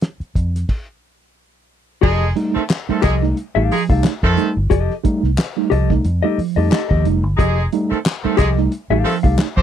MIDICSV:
0, 0, Header, 1, 7, 480
1, 0, Start_track
1, 0, Tempo, 669643
1, 1456, Time_signature, 4, 2, 24, 8
1, 6898, End_track
2, 0, Start_track
2, 0, Title_t, "Clean electric guitar"
2, 0, Program_c, 0, 27
2, 1444, Note_on_c, 0, 67, 92
2, 1452, Note_on_c, 0, 69, 100
2, 1458, Note_on_c, 0, 75, 105
2, 1605, Note_off_c, 0, 67, 0
2, 1608, Note_off_c, 0, 69, 0
2, 1612, Note_off_c, 0, 75, 0
2, 2165, Note_on_c, 0, 67, 87
2, 2171, Note_on_c, 0, 69, 109
2, 2178, Note_on_c, 0, 75, 101
2, 2307, Note_off_c, 0, 67, 0
2, 2310, Note_off_c, 0, 69, 0
2, 2313, Note_off_c, 0, 75, 0
2, 2545, Note_on_c, 0, 77, 90
2, 2549, Note_on_c, 0, 69, 81
2, 2554, Note_on_c, 0, 67, 74
2, 2679, Note_off_c, 0, 77, 0
2, 2682, Note_off_c, 0, 69, 0
2, 2684, Note_off_c, 0, 67, 0
2, 2793, Note_on_c, 0, 77, 48
2, 2798, Note_on_c, 0, 69, 50
2, 2802, Note_on_c, 0, 67, 41
2, 2876, Note_off_c, 0, 77, 0
2, 2879, Note_off_c, 0, 69, 0
2, 2881, Note_off_c, 0, 67, 0
2, 3369, Note_on_c, 0, 67, 102
2, 3373, Note_on_c, 0, 69, 101
2, 3380, Note_on_c, 0, 75, 100
2, 3527, Note_off_c, 0, 67, 0
2, 3529, Note_off_c, 0, 69, 0
2, 3533, Note_off_c, 0, 75, 0
2, 4086, Note_on_c, 0, 67, 84
2, 4096, Note_on_c, 0, 69, 95
2, 4096, Note_on_c, 0, 75, 94
2, 4226, Note_off_c, 0, 67, 0
2, 4231, Note_off_c, 0, 69, 0
2, 4231, Note_off_c, 0, 75, 0
2, 4462, Note_on_c, 0, 75, 87
2, 4470, Note_on_c, 0, 69, 81
2, 4472, Note_on_c, 0, 67, 71
2, 4573, Note_off_c, 0, 75, 0
2, 4577, Note_off_c, 0, 69, 0
2, 4578, Note_off_c, 0, 67, 0
2, 4704, Note_on_c, 0, 75, 54
2, 4710, Note_on_c, 0, 69, 54
2, 4714, Note_on_c, 0, 67, 53
2, 4790, Note_off_c, 0, 75, 0
2, 4793, Note_off_c, 0, 69, 0
2, 4795, Note_off_c, 0, 67, 0
2, 4804, Note_on_c, 0, 67, 69
2, 4813, Note_on_c, 0, 69, 82
2, 4817, Note_on_c, 0, 75, 83
2, 4916, Note_off_c, 0, 67, 0
2, 4920, Note_off_c, 0, 69, 0
2, 4922, Note_off_c, 0, 75, 0
2, 4940, Note_on_c, 0, 75, 100
2, 4945, Note_on_c, 0, 69, 74
2, 4951, Note_on_c, 0, 67, 72
2, 5051, Note_off_c, 0, 75, 0
2, 5054, Note_off_c, 0, 69, 0
2, 5057, Note_off_c, 0, 67, 0
2, 5294, Note_on_c, 0, 67, 88
2, 5298, Note_on_c, 0, 69, 88
2, 5305, Note_on_c, 0, 75, 91
2, 5429, Note_off_c, 0, 67, 0
2, 5431, Note_off_c, 0, 69, 0
2, 5434, Note_off_c, 0, 75, 0
2, 6000, Note_on_c, 0, 67, 92
2, 6007, Note_on_c, 0, 69, 97
2, 6013, Note_on_c, 0, 75, 104
2, 6141, Note_off_c, 0, 67, 0
2, 6144, Note_off_c, 0, 69, 0
2, 6147, Note_off_c, 0, 75, 0
2, 6383, Note_on_c, 0, 77, 81
2, 6386, Note_on_c, 0, 69, 85
2, 6391, Note_on_c, 0, 67, 75
2, 6514, Note_off_c, 0, 77, 0
2, 6515, Note_off_c, 0, 69, 0
2, 6518, Note_off_c, 0, 67, 0
2, 6618, Note_on_c, 0, 77, 55
2, 6625, Note_on_c, 0, 69, 45
2, 6627, Note_on_c, 0, 67, 45
2, 6704, Note_off_c, 0, 77, 0
2, 6708, Note_off_c, 0, 69, 0
2, 6709, Note_off_c, 0, 67, 0
2, 6898, End_track
3, 0, Start_track
3, 0, Title_t, "Horn section"
3, 0, Program_c, 1, 61
3, 1448, Note_on_c, 1, 63, 113
3, 1449, Note_on_c, 1, 56, 109
3, 1449, Note_on_c, 1, 68, 118
3, 1644, Note_off_c, 1, 63, 0
3, 1645, Note_off_c, 1, 56, 0
3, 1645, Note_off_c, 1, 68, 0
3, 1819, Note_on_c, 1, 51, 79
3, 1821, Note_on_c, 1, 57, 87
3, 1821, Note_on_c, 1, 69, 95
3, 1822, Note_on_c, 1, 60, 74
3, 1886, Note_off_c, 1, 51, 0
3, 1887, Note_off_c, 1, 57, 0
3, 1887, Note_off_c, 1, 69, 0
3, 1889, Note_off_c, 1, 60, 0
3, 2066, Note_on_c, 1, 51, 81
3, 2066, Note_on_c, 1, 60, 87
3, 2067, Note_on_c, 1, 57, 90
3, 2067, Note_on_c, 1, 69, 98
3, 2153, Note_off_c, 1, 51, 0
3, 2153, Note_off_c, 1, 57, 0
3, 2153, Note_off_c, 1, 60, 0
3, 2153, Note_off_c, 1, 69, 0
3, 2174, Note_on_c, 1, 63, 89
3, 2175, Note_on_c, 1, 56, 94
3, 2175, Note_on_c, 1, 68, 103
3, 2256, Note_off_c, 1, 56, 0
3, 2256, Note_off_c, 1, 63, 0
3, 2256, Note_off_c, 1, 68, 0
3, 2661, Note_on_c, 1, 56, 93
3, 2661, Note_on_c, 1, 68, 102
3, 2662, Note_on_c, 1, 63, 89
3, 2741, Note_off_c, 1, 56, 0
3, 2741, Note_off_c, 1, 63, 0
3, 2741, Note_off_c, 1, 68, 0
3, 3028, Note_on_c, 1, 60, 100
3, 3029, Note_on_c, 1, 57, 114
3, 3029, Note_on_c, 1, 69, 124
3, 3032, Note_on_c, 1, 51, 106
3, 3222, Note_off_c, 1, 57, 0
3, 3222, Note_off_c, 1, 60, 0
3, 3222, Note_off_c, 1, 69, 0
3, 3224, Note_off_c, 1, 51, 0
3, 5283, Note_on_c, 1, 56, 104
3, 5283, Note_on_c, 1, 68, 113
3, 5284, Note_on_c, 1, 63, 111
3, 5479, Note_off_c, 1, 56, 0
3, 5479, Note_off_c, 1, 68, 0
3, 5480, Note_off_c, 1, 63, 0
3, 5658, Note_on_c, 1, 57, 73
3, 5658, Note_on_c, 1, 69, 79
3, 5660, Note_on_c, 1, 51, 77
3, 5661, Note_on_c, 1, 60, 75
3, 5724, Note_off_c, 1, 57, 0
3, 5724, Note_off_c, 1, 69, 0
3, 5725, Note_off_c, 1, 51, 0
3, 5726, Note_off_c, 1, 60, 0
3, 5898, Note_on_c, 1, 60, 87
3, 5900, Note_on_c, 1, 57, 93
3, 5900, Note_on_c, 1, 69, 101
3, 5902, Note_on_c, 1, 51, 93
3, 5985, Note_off_c, 1, 60, 0
3, 5987, Note_off_c, 1, 57, 0
3, 5987, Note_off_c, 1, 69, 0
3, 5988, Note_off_c, 1, 51, 0
3, 6000, Note_on_c, 1, 63, 81
3, 6002, Note_on_c, 1, 56, 88
3, 6002, Note_on_c, 1, 68, 96
3, 6084, Note_off_c, 1, 63, 0
3, 6086, Note_off_c, 1, 56, 0
3, 6086, Note_off_c, 1, 68, 0
3, 6477, Note_on_c, 1, 51, 99
3, 6479, Note_on_c, 1, 60, 99
3, 6480, Note_on_c, 1, 57, 102
3, 6480, Note_on_c, 1, 69, 111
3, 6562, Note_off_c, 1, 51, 0
3, 6563, Note_off_c, 1, 57, 0
3, 6563, Note_off_c, 1, 60, 0
3, 6563, Note_off_c, 1, 69, 0
3, 6852, Note_on_c, 1, 67, 101
3, 6854, Note_on_c, 1, 60, 110
3, 6854, Note_on_c, 1, 72, 120
3, 6858, Note_on_c, 1, 57, 105
3, 6898, Note_off_c, 1, 57, 0
3, 6898, Note_off_c, 1, 60, 0
3, 6898, Note_off_c, 1, 67, 0
3, 6898, Note_off_c, 1, 72, 0
3, 6898, End_track
4, 0, Start_track
4, 0, Title_t, "Tine electric piano"
4, 0, Program_c, 2, 4
4, 1453, Note_on_c, 2, 53, 61
4, 1580, Note_off_c, 2, 53, 0
4, 1689, Note_on_c, 2, 55, 92
4, 1693, Note_on_c, 2, 63, 102
4, 1694, Note_on_c, 2, 57, 86
4, 1819, Note_off_c, 2, 55, 0
4, 1821, Note_off_c, 2, 57, 0
4, 1821, Note_off_c, 2, 63, 0
4, 1829, Note_on_c, 2, 57, 38
4, 1831, Note_on_c, 2, 63, 46
4, 1873, Note_off_c, 2, 57, 0
4, 1873, Note_off_c, 2, 63, 0
4, 2069, Note_on_c, 2, 55, 75
4, 2072, Note_on_c, 2, 57, 71
4, 2073, Note_on_c, 2, 63, 80
4, 2169, Note_off_c, 2, 55, 0
4, 2171, Note_off_c, 2, 57, 0
4, 2171, Note_off_c, 2, 63, 0
4, 2310, Note_on_c, 2, 55, 78
4, 2312, Note_on_c, 2, 57, 74
4, 2313, Note_on_c, 2, 63, 96
4, 2410, Note_off_c, 2, 55, 0
4, 2411, Note_off_c, 2, 57, 0
4, 2412, Note_off_c, 2, 63, 0
4, 2557, Note_on_c, 2, 55, 69
4, 2559, Note_on_c, 2, 57, 64
4, 2562, Note_on_c, 2, 63, 82
4, 2653, Note_off_c, 2, 55, 0
4, 2654, Note_off_c, 2, 57, 0
4, 2656, Note_off_c, 2, 63, 0
4, 2664, Note_on_c, 2, 53, 67
4, 2787, Note_off_c, 2, 53, 0
4, 2788, Note_on_c, 2, 55, 71
4, 2790, Note_on_c, 2, 57, 72
4, 2793, Note_on_c, 2, 63, 88
4, 2889, Note_off_c, 2, 55, 0
4, 2889, Note_off_c, 2, 63, 0
4, 2890, Note_off_c, 2, 57, 0
4, 3031, Note_on_c, 2, 53, 66
4, 3130, Note_off_c, 2, 53, 0
4, 3134, Note_on_c, 2, 57, 75
4, 3135, Note_on_c, 2, 55, 75
4, 3137, Note_on_c, 2, 63, 84
4, 3262, Note_off_c, 2, 55, 0
4, 3262, Note_off_c, 2, 57, 0
4, 3263, Note_off_c, 2, 63, 0
4, 3374, Note_on_c, 2, 53, 57
4, 3502, Note_off_c, 2, 53, 0
4, 3612, Note_on_c, 2, 55, 101
4, 3612, Note_on_c, 2, 57, 94
4, 3615, Note_on_c, 2, 63, 95
4, 3740, Note_off_c, 2, 55, 0
4, 3740, Note_off_c, 2, 57, 0
4, 3742, Note_off_c, 2, 63, 0
4, 3753, Note_on_c, 2, 63, 46
4, 3755, Note_on_c, 2, 57, 44
4, 3794, Note_off_c, 2, 63, 0
4, 3795, Note_off_c, 2, 57, 0
4, 3991, Note_on_c, 2, 55, 81
4, 3995, Note_on_c, 2, 57, 71
4, 3996, Note_on_c, 2, 63, 82
4, 4090, Note_off_c, 2, 55, 0
4, 4092, Note_off_c, 2, 57, 0
4, 4092, Note_off_c, 2, 63, 0
4, 4103, Note_on_c, 2, 53, 60
4, 4225, Note_off_c, 2, 53, 0
4, 4233, Note_on_c, 2, 55, 75
4, 4236, Note_on_c, 2, 57, 77
4, 4240, Note_on_c, 2, 63, 86
4, 4331, Note_off_c, 2, 55, 0
4, 4332, Note_off_c, 2, 57, 0
4, 4334, Note_off_c, 2, 63, 0
4, 4472, Note_on_c, 2, 55, 80
4, 4475, Note_on_c, 2, 57, 68
4, 4478, Note_on_c, 2, 63, 90
4, 4570, Note_off_c, 2, 55, 0
4, 4571, Note_off_c, 2, 57, 0
4, 4573, Note_off_c, 2, 63, 0
4, 4586, Note_on_c, 2, 53, 63
4, 4706, Note_off_c, 2, 53, 0
4, 4711, Note_on_c, 2, 55, 74
4, 4714, Note_on_c, 2, 57, 66
4, 4716, Note_on_c, 2, 63, 80
4, 4809, Note_off_c, 2, 55, 0
4, 4810, Note_off_c, 2, 57, 0
4, 4811, Note_off_c, 2, 63, 0
4, 4827, Note_on_c, 2, 57, 41
4, 4827, Note_on_c, 2, 63, 39
4, 4875, Note_off_c, 2, 57, 0
4, 4875, Note_off_c, 2, 63, 0
4, 4960, Note_on_c, 2, 53, 62
4, 5053, Note_off_c, 2, 53, 0
4, 5060, Note_on_c, 2, 55, 74
4, 5062, Note_on_c, 2, 57, 69
4, 5064, Note_on_c, 2, 63, 80
4, 5183, Note_off_c, 2, 55, 0
4, 5184, Note_off_c, 2, 57, 0
4, 5185, Note_off_c, 2, 63, 0
4, 5299, Note_on_c, 2, 53, 60
4, 5422, Note_off_c, 2, 53, 0
4, 5538, Note_on_c, 2, 55, 99
4, 5540, Note_on_c, 2, 57, 89
4, 5543, Note_on_c, 2, 63, 106
4, 5661, Note_off_c, 2, 55, 0
4, 5662, Note_off_c, 2, 57, 0
4, 5664, Note_off_c, 2, 63, 0
4, 5676, Note_on_c, 2, 57, 42
4, 5676, Note_on_c, 2, 63, 47
4, 5714, Note_off_c, 2, 57, 0
4, 5714, Note_off_c, 2, 63, 0
4, 5907, Note_on_c, 2, 55, 77
4, 5909, Note_on_c, 2, 57, 69
4, 5912, Note_on_c, 2, 63, 77
4, 6005, Note_off_c, 2, 55, 0
4, 6006, Note_off_c, 2, 57, 0
4, 6008, Note_off_c, 2, 63, 0
4, 6021, Note_on_c, 2, 53, 61
4, 6142, Note_off_c, 2, 53, 0
4, 6150, Note_on_c, 2, 55, 82
4, 6150, Note_on_c, 2, 57, 73
4, 6154, Note_on_c, 2, 63, 91
4, 6246, Note_off_c, 2, 55, 0
4, 6246, Note_off_c, 2, 57, 0
4, 6249, Note_off_c, 2, 63, 0
4, 6385, Note_on_c, 2, 55, 82
4, 6388, Note_on_c, 2, 57, 64
4, 6391, Note_on_c, 2, 63, 76
4, 6484, Note_off_c, 2, 55, 0
4, 6485, Note_off_c, 2, 57, 0
4, 6487, Note_off_c, 2, 63, 0
4, 6495, Note_on_c, 2, 53, 62
4, 6618, Note_off_c, 2, 53, 0
4, 6620, Note_on_c, 2, 55, 79
4, 6623, Note_on_c, 2, 57, 63
4, 6627, Note_on_c, 2, 63, 77
4, 6719, Note_off_c, 2, 57, 0
4, 6720, Note_off_c, 2, 63, 0
4, 6721, Note_off_c, 2, 55, 0
4, 6727, Note_on_c, 2, 57, 40
4, 6728, Note_on_c, 2, 63, 46
4, 6782, Note_off_c, 2, 57, 0
4, 6783, Note_off_c, 2, 63, 0
4, 6859, Note_on_c, 2, 53, 65
4, 6898, Note_off_c, 2, 53, 0
4, 6898, End_track
5, 0, Start_track
5, 0, Title_t, "Fingered electric bass"
5, 0, Program_c, 3, 33
5, 256, Note_on_c, 3, 41, 73
5, 454, Note_off_c, 3, 41, 0
5, 1458, Note_on_c, 3, 29, 113
5, 1657, Note_off_c, 3, 29, 0
5, 2178, Note_on_c, 3, 36, 91
5, 2377, Note_off_c, 3, 36, 0
5, 2552, Note_on_c, 3, 33, 95
5, 2640, Note_off_c, 3, 33, 0
5, 2795, Note_on_c, 3, 36, 104
5, 2882, Note_off_c, 3, 36, 0
5, 3037, Note_on_c, 3, 41, 88
5, 3123, Note_off_c, 3, 41, 0
5, 3273, Note_on_c, 3, 31, 94
5, 3361, Note_off_c, 3, 31, 0
5, 3751, Note_on_c, 3, 36, 77
5, 3839, Note_off_c, 3, 36, 0
5, 4096, Note_on_c, 3, 36, 95
5, 4295, Note_off_c, 3, 36, 0
5, 4335, Note_on_c, 3, 41, 112
5, 4447, Note_off_c, 3, 41, 0
5, 4708, Note_on_c, 3, 41, 100
5, 4796, Note_off_c, 3, 41, 0
5, 4952, Note_on_c, 3, 39, 96
5, 5038, Note_off_c, 3, 39, 0
5, 5054, Note_on_c, 3, 29, 89
5, 5184, Note_off_c, 3, 29, 0
5, 5184, Note_on_c, 3, 31, 85
5, 5273, Note_off_c, 3, 31, 0
5, 5296, Note_on_c, 3, 29, 115
5, 5494, Note_off_c, 3, 29, 0
5, 6013, Note_on_c, 3, 36, 90
5, 6211, Note_off_c, 3, 36, 0
5, 6380, Note_on_c, 3, 33, 86
5, 6469, Note_off_c, 3, 33, 0
5, 6626, Note_on_c, 3, 36, 96
5, 6713, Note_off_c, 3, 36, 0
5, 6865, Note_on_c, 3, 41, 103
5, 6898, Note_off_c, 3, 41, 0
5, 6898, End_track
6, 0, Start_track
6, 0, Title_t, "Muted fingered electric bass strokes"
6, 145, Note_on_c, 9, 29, 44
6, 217, Note_off_c, 9, 29, 0
6, 1836, Note_on_c, 9, 29, 48
6, 1908, Note_off_c, 9, 29, 0
6, 2073, Note_on_c, 9, 29, 51
6, 2144, Note_off_c, 9, 29, 0
6, 4574, Note_on_c, 9, 29, 52
6, 4646, Note_off_c, 9, 29, 0
6, 5672, Note_on_c, 9, 29, 50
6, 5744, Note_off_c, 9, 29, 0
6, 5912, Note_on_c, 9, 29, 51
6, 5984, Note_off_c, 9, 29, 0
6, 6898, End_track
7, 0, Start_track
7, 0, Title_t, "Drums"
7, 11, Note_on_c, 9, 42, 75
7, 17, Note_on_c, 9, 38, 109
7, 83, Note_off_c, 9, 42, 0
7, 88, Note_off_c, 9, 38, 0
7, 152, Note_on_c, 9, 42, 31
7, 224, Note_off_c, 9, 42, 0
7, 254, Note_on_c, 9, 36, 78
7, 260, Note_on_c, 9, 42, 72
7, 326, Note_off_c, 9, 36, 0
7, 332, Note_off_c, 9, 42, 0
7, 401, Note_on_c, 9, 38, 34
7, 401, Note_on_c, 9, 42, 65
7, 473, Note_off_c, 9, 38, 0
7, 473, Note_off_c, 9, 42, 0
7, 494, Note_on_c, 9, 36, 86
7, 495, Note_on_c, 9, 49, 82
7, 566, Note_off_c, 9, 36, 0
7, 567, Note_off_c, 9, 49, 0
7, 1456, Note_on_c, 9, 36, 122
7, 1457, Note_on_c, 9, 49, 106
7, 1528, Note_off_c, 9, 36, 0
7, 1528, Note_off_c, 9, 49, 0
7, 1592, Note_on_c, 9, 38, 34
7, 1664, Note_off_c, 9, 38, 0
7, 1697, Note_on_c, 9, 42, 76
7, 1768, Note_off_c, 9, 42, 0
7, 1836, Note_on_c, 9, 38, 39
7, 1907, Note_off_c, 9, 38, 0
7, 1931, Note_on_c, 9, 42, 89
7, 1934, Note_on_c, 9, 39, 96
7, 1937, Note_on_c, 9, 38, 108
7, 2002, Note_off_c, 9, 42, 0
7, 2006, Note_off_c, 9, 39, 0
7, 2008, Note_off_c, 9, 38, 0
7, 2173, Note_on_c, 9, 39, 69
7, 2178, Note_on_c, 9, 36, 91
7, 2178, Note_on_c, 9, 42, 84
7, 2245, Note_off_c, 9, 39, 0
7, 2250, Note_off_c, 9, 36, 0
7, 2250, Note_off_c, 9, 42, 0
7, 2316, Note_on_c, 9, 38, 36
7, 2388, Note_off_c, 9, 38, 0
7, 2417, Note_on_c, 9, 42, 72
7, 2488, Note_off_c, 9, 42, 0
7, 2663, Note_on_c, 9, 38, 35
7, 2663, Note_on_c, 9, 46, 83
7, 2734, Note_off_c, 9, 46, 0
7, 2735, Note_off_c, 9, 38, 0
7, 2793, Note_on_c, 9, 36, 93
7, 2864, Note_off_c, 9, 36, 0
7, 2896, Note_on_c, 9, 39, 81
7, 2898, Note_on_c, 9, 42, 85
7, 2901, Note_on_c, 9, 38, 118
7, 2967, Note_off_c, 9, 39, 0
7, 2969, Note_off_c, 9, 42, 0
7, 2972, Note_off_c, 9, 38, 0
7, 3032, Note_on_c, 9, 36, 96
7, 3104, Note_off_c, 9, 36, 0
7, 3134, Note_on_c, 9, 42, 80
7, 3205, Note_off_c, 9, 42, 0
7, 3374, Note_on_c, 9, 42, 86
7, 3377, Note_on_c, 9, 36, 120
7, 3446, Note_off_c, 9, 42, 0
7, 3448, Note_off_c, 9, 36, 0
7, 3515, Note_on_c, 9, 38, 32
7, 3587, Note_off_c, 9, 38, 0
7, 3618, Note_on_c, 9, 36, 105
7, 3618, Note_on_c, 9, 42, 77
7, 3690, Note_off_c, 9, 36, 0
7, 3690, Note_off_c, 9, 42, 0
7, 3754, Note_on_c, 9, 38, 37
7, 3825, Note_off_c, 9, 38, 0
7, 3854, Note_on_c, 9, 42, 84
7, 3858, Note_on_c, 9, 39, 99
7, 3860, Note_on_c, 9, 38, 104
7, 3926, Note_off_c, 9, 42, 0
7, 3929, Note_off_c, 9, 39, 0
7, 3932, Note_off_c, 9, 38, 0
7, 4097, Note_on_c, 9, 42, 78
7, 4169, Note_off_c, 9, 42, 0
7, 4230, Note_on_c, 9, 36, 102
7, 4230, Note_on_c, 9, 38, 34
7, 4302, Note_off_c, 9, 36, 0
7, 4302, Note_off_c, 9, 38, 0
7, 4333, Note_on_c, 9, 42, 80
7, 4405, Note_off_c, 9, 42, 0
7, 4581, Note_on_c, 9, 46, 68
7, 4652, Note_off_c, 9, 46, 0
7, 4817, Note_on_c, 9, 39, 89
7, 4817, Note_on_c, 9, 42, 96
7, 4819, Note_on_c, 9, 38, 116
7, 4888, Note_off_c, 9, 42, 0
7, 4889, Note_off_c, 9, 39, 0
7, 4891, Note_off_c, 9, 38, 0
7, 4951, Note_on_c, 9, 36, 94
7, 5023, Note_off_c, 9, 36, 0
7, 5056, Note_on_c, 9, 42, 79
7, 5127, Note_off_c, 9, 42, 0
7, 5296, Note_on_c, 9, 36, 120
7, 5299, Note_on_c, 9, 42, 89
7, 5368, Note_off_c, 9, 36, 0
7, 5370, Note_off_c, 9, 42, 0
7, 5439, Note_on_c, 9, 38, 36
7, 5510, Note_off_c, 9, 38, 0
7, 5537, Note_on_c, 9, 42, 87
7, 5609, Note_off_c, 9, 42, 0
7, 5676, Note_on_c, 9, 38, 36
7, 5747, Note_off_c, 9, 38, 0
7, 5771, Note_on_c, 9, 42, 98
7, 5776, Note_on_c, 9, 39, 100
7, 5777, Note_on_c, 9, 38, 104
7, 5843, Note_off_c, 9, 42, 0
7, 5848, Note_off_c, 9, 39, 0
7, 5849, Note_off_c, 9, 38, 0
7, 6009, Note_on_c, 9, 39, 73
7, 6012, Note_on_c, 9, 36, 90
7, 6013, Note_on_c, 9, 42, 84
7, 6080, Note_off_c, 9, 39, 0
7, 6084, Note_off_c, 9, 36, 0
7, 6085, Note_off_c, 9, 42, 0
7, 6145, Note_on_c, 9, 38, 36
7, 6217, Note_off_c, 9, 38, 0
7, 6250, Note_on_c, 9, 42, 83
7, 6321, Note_off_c, 9, 42, 0
7, 6489, Note_on_c, 9, 46, 83
7, 6490, Note_on_c, 9, 38, 36
7, 6561, Note_off_c, 9, 46, 0
7, 6562, Note_off_c, 9, 38, 0
7, 6624, Note_on_c, 9, 36, 106
7, 6695, Note_off_c, 9, 36, 0
7, 6725, Note_on_c, 9, 42, 87
7, 6728, Note_on_c, 9, 38, 117
7, 6728, Note_on_c, 9, 39, 89
7, 6796, Note_off_c, 9, 42, 0
7, 6799, Note_off_c, 9, 38, 0
7, 6800, Note_off_c, 9, 39, 0
7, 6861, Note_on_c, 9, 36, 86
7, 6898, Note_off_c, 9, 36, 0
7, 6898, End_track
0, 0, End_of_file